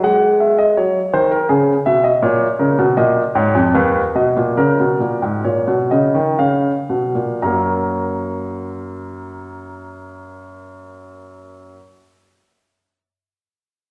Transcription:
0.03 G#3 F#5
0.40 E5
0.58 D#5
0.77 F#3 C#5
1.13 D#3 C5
1.31 A#4
1.49 C#3 G#4
1.86 B2 E5
2.04 D#5
2.22 A#2 C#5
2.59 C#3 A#4
2.78 B2
2.97 A#2 D#5
3.35 G#2 C#5
3.55 F2
3.75 D#2 B4
4.15 B2 D#5
4.37 A#2
4.57 C#3 A#4
4.80 B2
5.00 A#2
5.22 G#2
5.44 A#2 C#5
5.68 B2
5.91 C#3 D#5
6.14 D#3
6.39 C#3 F5
6.89 B2
7.15 A#2
7.42 F#2 F#3 A#3 A#5

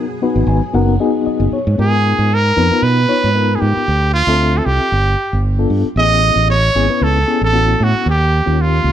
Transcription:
Already playing: F#3 B3 G#4
0.22 B3 D#4 F#4 B4
0.36 G#1
0.47 G#1 G#5
0.74 F#1 B3 D#4 F#4 A#4 F#5
1.00 B3 D#4 F#4 G#4 D#5
1.26 D#5, muted fingered electric bass stroke
1.40 F#1
1.52 C#5, muted fingered electric bass stroke
1.67 G#2
1.78 G#2 B3 D#4 F4 G#4 A#4
2.19 G#2
2.34 A#4
2.56 F2 B3 D#4 F4 B4
2.71 B3 D#4 F4 B4, muted fingered electric bass stroke
2.82 B2 B4
3.08 B3 D#4 F4 C#5
3.24 G#2
3.34 B3 D#4 F4 A#4
3.55 G#4
3.60 G#2 G4
3.77 muted fingered electric bass stroke
3.88 D2
4.13 F4
4.27 D2 C4 F4 A4 E5
4.57 A4
4.65 C2 G4
4.81 muted fingered electric bass stroke
4.92 G1
5.33 G1
5.58 B3 D4 F4 A4
5.70 G2
5.85 muted fingered electric bass stroke
5.96 A1 B3 C#4 E4 G#4 D#5
6.36 A1
6.50 C#5
6.75 G#1 B3 C#4 E4 G#4
6.89 B3 C#4 E4 B4, muted fingered electric bass stroke
7.01 C#2 A4
7.27 B3 C#4 E4 G#4
7.41 A1 A4
7.53 B3 C#4 E4 F#4
7.80 A2 F#4
7.95 muted fingered electric bass stroke
8.06 D#2 G4
8.46 D#2 A#3 C#4 F4 G4
8.61 F4
8.84 C#2

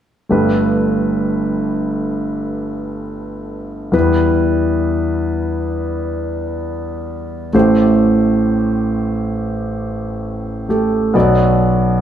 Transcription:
0.29 G1 G2 A3 G4 B4
3.92 E2 E3 G3 E4 B4
7.53 A1 A2 A3 G4 C5
10.69 A3 G4 A4
11.14 B1 B2 B3 F#4 D5

